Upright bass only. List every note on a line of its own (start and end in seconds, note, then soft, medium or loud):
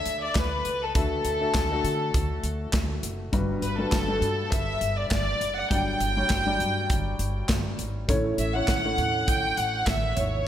0.06 0.30 D2 medium
0.35 0.60 D2 medium
0.65 0.90 C#2 medium
0.95 1.20 D2 medium
1.25 1.49 D2 medium
1.55 1.79 D2 medium
1.84 2.09 D3 medium
2.14 2.39 D2 medium
2.44 2.68 D2 medium
2.73 2.98 D2 medium
3.03 3.27 F#1 medium
3.33 3.57 G1 medium
3.62 3.87 G1 medium
3.92 4.17 G1 medium
4.21 4.46 G2 medium
4.52 4.76 G1 medium
4.81 5.06 G1 medium
5.11 5.36 G1 medium
5.41 5.65 F#1 medium
5.71 5.95 G1 medium
6.00 6.25 G1 medium
6.30 6.61 G1 medium
6.60 6.84 G2 medium
6.90 7.14 G1 medium
7.19 7.44 G1 medium
7.49 7.74 G1 medium
7.79 8.03 G#1 medium
8.09 8.33 A1 medium
8.38 8.63 A1 medium
8.68 8.93 A1 medium
8.98 9.22 A2 medium
9.28 9.52 A1 medium
9.57 9.82 A1 medium
9.87 10.11 A1 medium
10.17 10.42 G#1 medium